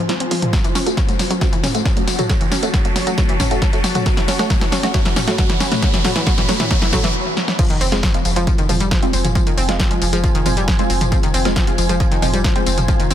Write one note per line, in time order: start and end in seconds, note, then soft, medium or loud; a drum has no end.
0.00 0.53 F4 medium
0.00 0.53 C5 medium
0.00 0.53 G#5 medium
0.00 riser medium
0.09 0.15 F3 medium
0.09 0.23 G#3 medium
0.09 0.23 C4 medium
0.09 0.23 F4 medium
0.09 snare medium
0.09 closed hi-hat medium
0.20 0.24 C4 medium
0.20 closed hi-hat medium
0.31 0.40 F3 medium
0.31 0.40 G#3 medium
0.31 0.40 C4 medium
0.31 0.40 F4 medium
0.31 open hi-hat loud
0.42 0.48 F3 medium
0.42 closed hi-hat medium
0.42 mid tom loud
0.53 0.59 F#3 medium
0.53 0.67 A3 medium
0.53 0.67 C#4 medium
0.53 0.67 F#4 medium
0.53 7.15 F#4 medium
0.53 kick loud
0.53 snare medium
0.53 closed hi-hat medium
0.53 tambourine soft
0.64 0.68 E3 medium
0.64 closed hi-hat medium
0.64 tambourine soft
0.75 0.81 C#4 medium
0.75 snare medium
0.75 open hi-hat loud
0.75 tambourine medium
0.86 0.95 A3 medium
0.86 0.95 C#4 medium
0.86 0.95 F#4 loud
0.86 7.15 C#5 medium
0.86 closed hi-hat medium
0.86 tambourine soft
0.97 1.03 F#3 medium
0.97 kick loud
0.97 snare medium
0.97 closed hi-hat medium
0.97 tambourine soft
1.08 1.12 F#3 medium
1.08 1.17 A3 medium
1.08 1.17 C#4 medium
1.08 1.17 F#4 medium
1.08 closed hi-hat medium
1.08 tambourine soft
1.19 1.25 F#3 medium
1.19 snare medium
1.19 open hi-hat medium
1.19 tambourine medium
1.30 1.39 F#3 loud
1.30 1.40 A3 medium
1.30 1.40 C#4 medium
1.30 1.40 F#4 medium
1.30 4.28 A5 medium
1.30 closed hi-hat medium
1.30 tambourine soft
1.41 1.48 F#3 loud
1.41 1.55 A3 medium
1.41 1.55 C#4 medium
1.41 1.55 F#4 medium
1.41 kick loud
1.41 snare medium
1.41 closed hi-hat medium
1.41 tambourine soft
1.52 1.56 E3 loud
1.52 closed hi-hat medium
1.52 tambourine soft
1.63 1.70 C#4 medium
1.63 snare medium
1.63 mid tom medium
1.63 open hi-hat loud
1.63 tambourine medium
1.75 1.84 A3 medium
1.75 1.83 A3 medium
1.75 1.83 C#4 medium
1.75 1.83 F#4 loud
1.75 closed hi-hat medium
1.75 tambourine soft
1.85 1.92 F#3 medium
1.85 kick loud
1.85 snare medium
1.85 closed hi-hat medium
1.85 tambourine soft
1.97 2.00 F#3 medium
1.97 2.05 A3 medium
1.97 2.05 C#4 medium
1.97 2.05 F#4 medium
1.97 closed hi-hat medium
1.97 tambourine soft
2.07 2.14 F#3 medium
2.07 snare medium
2.07 open hi-hat loud
2.07 tambourine medium
2.19 2.28 F#3 loud
2.19 2.28 A3 medium
2.19 2.28 C#4 medium
2.19 2.28 F#4 medium
2.19 closed hi-hat medium
2.19 mid tom loud
2.19 tambourine soft
2.30 2.36 F#3 loud
2.30 2.43 A3 medium
2.30 2.43 C#4 medium
2.30 2.43 F#4 medium
2.30 kick loud
2.30 snare medium
2.30 closed hi-hat medium
2.30 tambourine soft
2.41 2.44 E3 medium
2.41 closed hi-hat medium
2.41 tambourine soft
2.52 2.58 C#4 medium
2.52 snare medium
2.52 open hi-hat loud
2.52 tambourine medium
2.63 2.72 A3 medium
2.63 2.71 A3 loud
2.63 2.71 C#4 medium
2.63 2.71 F#4 loud
2.63 closed hi-hat medium
2.63 tambourine soft
2.74 2.80 F#3 medium
2.74 kick loud
2.74 snare medium
2.74 closed hi-hat medium
2.74 tambourine soft
2.85 2.88 F#3 medium
2.85 2.93 A3 medium
2.85 2.93 C#4 medium
2.85 2.93 F#4 medium
2.85 closed hi-hat medium
2.85 tambourine soft
2.96 3.02 F#3 medium
2.96 snare medium
2.96 open hi-hat medium
2.96 tambourine medium
3.07 3.16 F#3 loud
3.07 3.16 A3 medium
3.07 3.16 C#4 medium
3.07 3.16 F#4 medium
3.07 closed hi-hat medium
3.07 tambourine soft
3.18 3.24 F#3 loud
3.18 3.32 A3 medium
3.18 3.32 C#4 medium
3.18 3.31 F#4 medium
3.18 kick loud
3.18 snare medium
3.18 closed hi-hat medium
3.18 tambourine soft
3.29 3.33 E3 loud
3.29 closed hi-hat medium
3.29 tambourine soft
3.40 3.46 C#4 medium
3.40 kick medium
3.40 snare medium
3.40 mid tom medium
3.40 open hi-hat loud
3.40 tambourine medium
3.51 3.60 A3 medium
3.51 3.59 A3 loud
3.51 3.59 C#4 medium
3.51 3.59 F#4 loud
3.51 closed hi-hat medium
3.51 tambourine soft
3.62 3.68 F#3 medium
3.62 kick loud
3.62 snare medium
3.62 closed hi-hat medium
3.62 tambourine soft
3.73 3.77 F#3 medium
3.73 3.82 A3 medium
3.73 3.82 C#4 medium
3.73 3.82 F#4 medium
3.73 closed hi-hat medium
3.73 tambourine soft
3.84 3.90 F#3 medium
3.84 snare medium
3.84 open hi-hat medium
3.84 tambourine medium
3.95 4.04 F#3 loud
3.95 4.04 A3 medium
3.95 4.04 C#4 medium
3.95 4.04 F#4 medium
3.95 closed hi-hat medium
3.95 mid tom medium
3.95 tambourine soft
4.06 4.12 F#3 loud
4.06 4.20 A3 medium
4.06 4.20 C#4 medium
4.06 4.20 F#4 medium
4.06 kick loud
4.06 snare medium
4.06 closed hi-hat medium
4.06 tambourine soft
4.15 4.21 E3 loud
4.15 7.15 B5 medium
4.15 snare medium
4.15 closed hi-hat medium
4.15 tambourine soft
4.28 4.34 C#4 medium
4.28 snare medium
4.28 open hi-hat loud
4.28 tambourine medium
4.39 4.48 A3 medium
4.39 4.48 A3 loud
4.39 4.48 C#4 medium
4.39 4.48 F#4 loud
4.39 snare medium
4.39 closed hi-hat medium
4.39 tambourine soft
4.50 4.56 F#3 loud
4.50 4.64 A3 medium
4.50 4.64 C#4 medium
4.50 4.64 F#4 medium
4.50 kick loud
4.50 snare loud
4.50 closed hi-hat medium
4.50 tambourine soft
4.61 4.65 E3 loud
4.61 snare medium
4.61 closed hi-hat medium
4.61 tambourine soft
4.72 4.78 C#4 loud
4.72 snare loud
4.72 open hi-hat medium
4.72 tambourine medium
4.83 4.92 A3 medium
4.83 4.92 A3 loud
4.83 4.92 C#4 medium
4.83 4.92 F#4 loud
4.83 snare medium
4.83 closed hi-hat medium
4.83 tambourine soft
4.94 5.00 F#3 loud
4.94 5.08 A3 medium
4.94 5.08 C#4 medium
4.94 5.08 F#4 medium
4.94 kick loud
4.94 snare loud
4.94 closed hi-hat medium
4.94 tambourine soft
5.05 5.09 E3 loud
5.05 snare medium
5.05 closed hi-hat medium
5.05 tambourine soft
5.16 5.23 C#4 loud
5.16 snare loud
5.16 mid tom medium
5.16 open hi-hat loud
5.16 tambourine medium
5.28 5.37 A3 medium
5.28 5.36 A3 loud
5.28 5.36 C#4 medium
5.28 5.36 F#4 loud
5.28 snare medium
5.28 closed hi-hat medium
5.28 tambourine soft
5.38 5.45 F#3 loud
5.38 5.52 A3 medium
5.38 5.52 C#4 medium
5.38 5.52 F#4 medium
5.38 kick loud
5.38 snare medium
5.38 closed hi-hat medium
5.38 tambourine soft
5.50 5.53 E3 loud
5.50 snare medium
5.50 closed hi-hat medium
5.50 tambourine soft
5.60 5.67 C#4 loud
5.60 snare loud
5.60 open hi-hat medium
5.60 tambourine medium
5.72 5.80 A3 loud
5.72 5.81 A3 medium
5.72 5.80 C#4 medium
5.72 5.80 F#4 loud
5.72 snare medium
5.72 closed hi-hat medium
5.72 mid tom medium
5.72 tambourine soft
5.82 5.89 F#3 loud
5.82 5.96 A3 medium
5.82 5.96 C#4 medium
5.82 5.96 F#4 medium
5.82 kick loud
5.82 snare loud
5.82 closed hi-hat medium
5.82 tambourine soft
5.94 5.97 E3 loud
5.94 snare medium
5.94 closed hi-hat medium
5.94 tambourine soft
6.04 6.11 F#3 loud
6.04 6.18 A3 medium
6.04 6.18 C#4 medium
6.04 6.18 F#4 medium
6.04 snare loud
6.04 mid tom medium
6.04 open hi-hat loud
6.04 tambourine medium
6.16 6.19 E3 loud
6.16 snare medium
6.16 closed hi-hat medium
6.16 tambourine soft
6.27 6.33 F#3 loud
6.27 6.40 A3 medium
6.27 6.40 C#4 medium
6.27 6.40 F#4 medium
6.27 kick loud
6.27 snare loud
6.27 closed hi-hat medium
6.27 tambourine soft
6.38 6.41 E3 loud
6.38 snare medium
6.38 closed hi-hat medium
6.38 mid tom medium
6.38 tambourine soft
6.49 6.55 F#3 loud
6.49 6.62 A3 medium
6.49 6.62 C#4 medium
6.49 6.62 F#4 medium
6.49 snare loud
6.49 open hi-hat medium
6.49 tambourine medium
6.60 6.63 E3 loud
6.60 snare loud
6.60 closed hi-hat medium
6.60 mid tom medium
6.60 tambourine soft
6.71 6.77 F#3 loud
6.71 6.84 A3 medium
6.71 6.84 C#4 medium
6.71 6.84 F#4 medium
6.71 kick loud
6.71 snare loud
6.71 closed hi-hat medium
6.71 tambourine soft
6.82 6.85 E3 loud
6.82 snare loud
6.82 closed hi-hat medium
6.82 tambourine soft
6.93 6.99 F#3 loud
6.93 7.06 A3 medium
6.93 7.07 C#4 medium
6.93 7.07 F#4 medium
6.93 kick medium
6.93 snare loud
6.93 mid tom medium
6.93 open hi-hat loud
6.93 tambourine medium
7.04 7.07 E3 loud
7.04 snare medium
7.04 closed hi-hat medium
7.04 tambourine soft
7.37 snare medium
7.48 snare medium
7.59 7.65 F3 loud
7.59 7.73 G#3 medium
7.59 7.73 C4 medium
7.59 7.73 F4 medium
7.59 13.14 F4 medium
7.59 kick loud
7.59 closed hi-hat medium
7.59 crash loud
7.59 tambourine soft
7.70 7.80 F1 medium
7.70 7.74 D#3 loud
7.70 closed hi-hat medium
7.70 tambourine soft
7.81 7.92 F1 loud
7.81 7.87 C4 loud
7.81 open hi-hat loud
7.81 tambourine medium
7.90 8.03 F1 medium
7.90 8.01 G#3 medium
7.90 8.01 G#3 loud
7.90 8.01 C4 loud
7.90 8.01 F4 loud
7.90 13.14 G#5 medium
7.90 snare medium
7.90 closed hi-hat medium
7.90 tambourine soft
8.03 8.09 F3 medium
8.03 kick loud
8.03 snare loud
8.03 closed hi-hat medium
8.03 tambourine soft
8.14 8.25 F1 medium
8.14 8.18 F3 medium
8.14 8.23 G#3 medium
8.14 8.23 C4 medium
8.14 8.23 F4 medium
8.14 closed hi-hat medium
8.14 tambourine soft
8.25 8.36 F1 loud
8.25 8.31 F3 medium
8.25 13.14 C5 medium
8.25 open hi-hat medium
8.25 tambourine medium
8.36 8.47 F1 medium
8.36 8.45 F3 loud
8.36 8.50 G#3 medium
8.36 8.50 C4 medium
8.36 8.50 F4 medium
8.36 closed hi-hat medium
8.36 tambourine soft
8.47 8.53 F3 loud
8.47 kick loud
8.47 closed hi-hat medium
8.47 tambourine soft
8.58 8.69 F1 medium
8.58 8.62 D#3 loud
8.58 closed hi-hat medium
8.58 tambourine soft
8.69 8.80 F1 loud
8.69 8.78 F3 loud
8.69 8.78 G#3 medium
8.69 8.78 C4 medium
8.69 8.78 F4 medium
8.69 mid tom medium
8.69 open hi-hat loud
8.69 tambourine medium
8.80 8.91 F1 medium
8.80 8.84 G3 loud
8.80 closed hi-hat medium
8.80 tambourine soft
8.91 8.97 F3 medium
8.91 kick loud
8.91 snare loud
8.91 closed hi-hat medium
8.91 tambourine soft
9.02 9.13 F1 medium
9.02 9.16 G#3 medium
9.02 9.11 C4 medium
9.02 9.16 C4 medium
9.02 9.16 F4 loud
9.02 closed hi-hat medium
9.02 tambourine soft
9.13 9.24 F1 loud
9.13 9.23 C4 medium
9.13 open hi-hat medium
9.13 tambourine medium
9.25 9.35 F1 medium
9.25 9.28 F3 medium
9.25 closed hi-hat medium
9.25 mid tom medium
9.25 tambourine soft
9.35 9.42 F3 loud
9.35 9.49 G#3 medium
9.35 9.49 C4 medium
9.35 9.49 F4 medium
9.35 kick loud
9.35 closed hi-hat medium
9.35 tambourine soft
9.47 9.57 F1 medium
9.47 9.50 D#3 loud
9.47 closed hi-hat medium
9.47 tambourine soft
9.57 9.68 F1 loud
9.57 9.64 C4 loud
9.57 open hi-hat loud
9.57 tambourine medium
9.69 9.79 F1 medium
9.69 9.78 G#3 medium
9.69 9.77 G#3 loud
9.69 9.77 C4 medium
9.69 9.77 F4 loud
9.69 snare medium
9.69 closed hi-hat medium
9.69 tambourine soft
9.80 9.86 F3 medium
9.80 kick loud
9.80 snare loud
9.80 closed hi-hat medium
9.80 tambourine soft
9.91 10.01 F1 medium
9.91 9.94 F3 medium
9.91 9.99 G#3 medium
9.91 9.99 C4 medium
9.91 9.99 F4 medium
9.91 closed hi-hat medium
9.91 tambourine soft
10.02 10.12 F1 loud
10.02 10.08 F3 medium
10.02 open hi-hat medium
10.02 tambourine medium
10.13 10.24 F1 medium
10.13 10.22 F3 loud
10.13 10.26 G#3 medium
10.13 10.26 C4 medium
10.13 10.26 F4 medium
10.13 closed hi-hat medium
10.13 tambourine soft
10.24 10.30 F3 loud
10.24 kick loud
10.24 closed hi-hat medium
10.24 tambourine soft
10.35 10.45 F1 medium
10.35 10.38 D#3 loud
10.35 closed hi-hat medium
10.35 tambourine soft
10.46 10.56 F1 medium
10.46 10.55 F3 loud
10.46 10.54 G#3 medium
10.46 10.54 C4 medium
10.46 10.54 F4 medium
10.46 mid tom loud
10.46 open hi-hat loud
10.46 tambourine medium
10.57 10.68 F1 medium
10.57 10.61 G3 loud
10.57 closed hi-hat medium
10.57 tambourine soft
10.68 10.74 F3 medium
10.68 kick loud
10.68 snare loud
10.68 closed hi-hat medium
10.68 tambourine soft
10.79 10.89 F1 medium
10.79 10.92 G#3 medium
10.79 10.92 C4 medium
10.79 10.88 C4 medium
10.79 10.92 F4 loud
10.79 closed hi-hat medium
10.79 tambourine soft
10.90 11.01 F1 loud
10.90 10.99 C4 medium
10.90 open hi-hat loud
10.90 tambourine medium
11.01 11.12 F1 medium
11.01 11.05 F3 medium
11.01 closed hi-hat medium
11.01 mid tom medium
11.01 tambourine soft
11.12 11.18 F3 loud
11.12 11.26 G#3 medium
11.12 11.26 C4 medium
11.12 11.26 F4 medium
11.12 kick loud
11.12 closed hi-hat medium
11.12 tambourine soft
11.23 11.33 F1 medium
11.23 11.27 D#3 loud
11.23 closed hi-hat medium
11.23 tambourine soft
11.34 11.45 F1 loud
11.34 11.40 C4 loud
11.34 open hi-hat loud
11.34 tambourine medium
11.45 11.56 F1 medium
11.45 11.54 G#3 loud
11.45 11.54 G#3 medium
11.45 11.54 C4 loud
11.45 11.54 F4 loud
11.45 snare medium
11.45 closed hi-hat medium
11.45 tambourine soft
11.56 11.62 F3 medium
11.56 kick loud
11.56 snare loud
11.56 closed hi-hat medium
11.56 tambourine soft
11.67 11.78 F1 medium
11.67 11.71 F3 medium
11.67 11.76 G#3 medium
11.67 11.76 C4 medium
11.67 11.76 F4 medium
11.67 closed hi-hat medium
11.67 tambourine soft
11.78 11.89 F1 loud
11.78 11.84 F3 medium
11.78 open hi-hat loud
11.78 tambourine medium
11.89 12.00 F1 medium
11.89 11.98 F3 loud
11.89 12.03 G#3 medium
11.89 12.03 C4 medium
11.89 12.03 F4 medium
11.89 closed hi-hat medium
11.89 tambourine soft
12.00 12.06 F3 loud
12.00 kick loud
12.00 closed hi-hat medium
12.00 tambourine soft
12.11 12.22 F1 medium
12.11 12.15 D#3 loud
12.11 closed hi-hat medium
12.11 tambourine soft
12.22 12.33 F1 loud
12.22 12.31 F3 loud
12.22 12.31 G#3 medium
12.22 12.31 C4 medium
12.22 12.31 F4 medium
12.22 mid tom medium
12.22 open hi-hat loud
12.22 tambourine medium
12.33 12.44 F1 medium
12.33 12.37 G3 loud
12.33 closed hi-hat medium
12.33 tambourine soft
12.44 12.51 F3 medium
12.44 kick loud
12.44 snare loud
12.44 closed hi-hat medium
12.44 tambourine soft
12.55 12.66 F1 medium
12.55 12.69 G#3 medium
12.55 12.69 C4 medium
12.55 12.65 C4 medium
12.55 12.69 F4 loud
12.55 closed hi-hat medium
12.55 tambourine soft
12.66 12.77 F1 loud
12.66 12.76 C4 medium
12.66 open hi-hat loud
12.66 tambourine medium
12.78 12.88 F1 medium
12.78 12.81 F3 medium
12.78 closed hi-hat medium
12.78 mid tom medium
12.78 tambourine soft
12.88 12.95 F3 loud
12.88 13.02 G#3 medium
12.88 13.02 C4 medium
12.88 13.02 F4 medium
12.88 kick loud
12.88 closed hi-hat medium
12.88 tambourine soft
13.00 13.10 F1 medium
13.00 13.03 D#3 loud
13.00 closed hi-hat medium
13.00 tambourine soft
13.11 13.14 F1 loud
13.11 13.14 C4 loud
13.11 mid tom medium
13.11 open hi-hat loud
13.11 tambourine medium